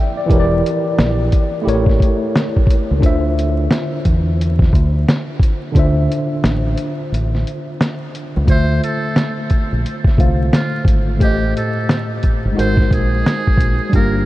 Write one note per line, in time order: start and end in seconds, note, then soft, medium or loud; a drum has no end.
0.00 0.24 F3 medium
0.00 0.25 C4 medium
0.00 0.25 E4 medium
0.00 0.26 G4 medium
0.00 0.27 A4 medium
0.00 0.17 D5 medium
0.00 0.31 E5 medium
0.00 0.16 G5 medium
0.17 0.39 D5 medium
0.26 1.61 E3 medium
0.26 1.62 E4 medium
0.26 1.63 G4 medium
0.26 kick loud
0.30 0.61 E1 loud
0.30 1.64 A#4 medium
0.30 0.40 C#5 medium
0.30 closed hi-hat medium
0.40 1.68 D5 medium
0.66 closed hi-hat medium
0.99 1.29 A#1 loud
0.99 snare loud
0.99 closed hi-hat medium
1.32 kick medium
1.32 closed hi-hat medium
1.62 2.97 A3 medium
1.62 2.98 E4 medium
1.62 2.99 G4 medium
1.67 1.98 A1 loud
1.67 3.00 A#4 medium
1.67 3.01 C#5 medium
1.67 closed hi-hat medium
1.86 kick loud
1.86 snare soft
2.00 kick medium
2.00 closed hi-hat medium
2.36 snare loud
2.36 closed hi-hat medium
2.56 kick medium
2.67 kick loud
2.67 closed hi-hat medium
2.91 3.02 C#2 medium
2.99 5.69 D3 medium
2.99 5.70 D4 medium
2.99 5.71 F4 medium
2.99 kick medium
3.03 3.67 D2 medium
3.03 5.72 C5 medium
3.03 5.73 E5 medium
3.03 closed hi-hat medium
3.39 closed hi-hat medium
3.71 snare loud
3.71 closed hi-hat medium
4.05 4.69 E2 medium
4.05 kick medium
4.05 closed hi-hat medium
4.41 closed hi-hat medium
4.59 kick loud
4.59 snare soft
4.73 5.04 D2 loud
4.73 kick medium
4.73 closed hi-hat soft
5.09 snare loud
5.09 closed hi-hat medium
5.40 kick loud
5.40 closed hi-hat medium
5.72 6.06 D2 loud
5.72 8.42 D3 medium
5.72 8.43 D4 medium
5.72 8.44 F4 medium
5.72 kick loud
5.72 closed hi-hat medium
5.77 8.45 C5 medium
5.77 8.46 E5 medium
6.12 closed hi-hat medium
6.44 6.75 A1 medium
6.44 snare loud
6.44 closed hi-hat medium
6.78 closed hi-hat medium
7.12 7.43 A1 medium
7.12 closed hi-hat medium
7.35 snare soft
7.47 closed hi-hat medium
7.81 snare loud
7.81 closed hi-hat medium
8.15 closed hi-hat medium
8.37 8.47 C#2 loud
8.45 8.79 D2 medium
8.45 10.13 D3 medium
8.45 10.14 A3 medium
8.45 10.15 F4 medium
8.45 kick medium
8.45 closed hi-hat medium
8.49 10.16 C5 medium
8.49 8.80 C5 loud
8.49 10.17 E5 medium
8.84 9.36 A4 medium
8.84 closed hi-hat medium
9.16 snare medium
9.16 closed hi-hat medium
9.50 kick medium
9.50 closed hi-hat medium
9.72 9.83 A#1 medium
9.86 closed hi-hat medium
10.04 kick loud
10.04 snare soft
10.17 10.50 C2 medium
10.17 11.20 D3 medium
10.17 11.18 A3 medium
10.17 11.21 F4 medium
10.17 11.21 C5 medium
10.17 11.22 F5 medium
10.17 kick medium
10.17 closed hi-hat medium
10.53 10.85 F4 medium
10.53 snare loud
10.53 closed hi-hat medium
10.85 11.17 G#1 medium
10.85 kick loud
10.85 closed hi-hat medium
11.17 11.52 A1 medium
11.17 12.53 A2 medium
11.17 12.53 A3 medium
11.17 12.54 G4 medium
11.17 kick loud
11.17 closed hi-hat medium
11.22 11.52 G4 medium
11.22 12.55 C5 medium
11.22 12.56 D#5 medium
11.57 12.08 A4 medium
11.57 closed hi-hat medium
11.89 snare loud
11.89 closed hi-hat medium
12.23 kick medium
12.23 closed hi-hat medium
12.45 12.56 G1 medium
12.53 13.89 G#3 medium
12.53 13.90 D#4 medium
12.53 13.90 F#4 medium
12.58 12.89 G#1 loud
12.58 13.91 A#4 medium
12.58 12.89 C5 medium
12.58 13.92 C5 medium
12.58 closed hi-hat medium
12.77 kick loud
12.77 snare soft
12.91 13.22 A#1 medium
12.91 13.91 G#4 medium
12.91 kick medium
12.91 closed hi-hat medium
13.26 snare loud
13.26 closed hi-hat medium
13.47 kick medium
13.58 13.78 A#1 medium
13.58 kick loud
13.58 closed hi-hat medium
13.89 14.24 G1 loud
13.89 14.26 G3 medium
13.89 14.26 D4 medium
13.89 14.26 F4 medium
13.89 kick medium
13.89 closed hi-hat medium
13.95 14.26 A#3 medium
13.95 14.26 G4 medium
13.95 14.25 A#4 medium